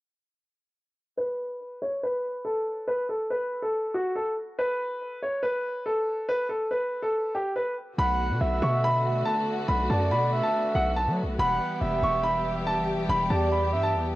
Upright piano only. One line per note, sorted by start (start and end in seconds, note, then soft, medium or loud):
1.17 1.77 B4 loud
1.82 1.99 C#5 medium
2.03 2.43 B4 medium
2.45 2.85 A4 medium
2.88 3.05 B4 medium
3.09 3.26 A4 medium
3.30 3.60 B4 medium
3.62 3.92 A4 medium
3.94 4.11 F#4 medium
4.15 4.32 A4 medium
4.58 5.18 B4 loud
5.23 5.39 C#5 medium
5.43 5.83 B4 medium
5.86 6.26 A4 medium
6.29 6.46 B4 loud
6.49 6.66 A4 medium
6.71 7.01 B4 medium
7.02 7.33 A4 medium
7.35 7.52 G4 medium
7.56 7.73 B4 medium
7.99 8.58 B5 loud
8.63 8.80 C#6 medium
8.84 9.24 B5 loud
9.25 9.66 A5 medium
9.68 9.85 B5 medium
9.90 10.07 A5 medium
10.11 10.41 B5 medium
10.43 10.73 A5 medium
10.75 10.92 F#5 medium
10.96 11.13 A5 medium
11.39 11.99 B5 loud
12.03 12.20 C#6 medium
12.23 12.64 B5 medium
12.67 13.07 A5 medium
13.09 13.26 B5 loud
13.30 13.47 A5 medium
13.52 13.82 B5 medium
13.83 14.13 A5 medium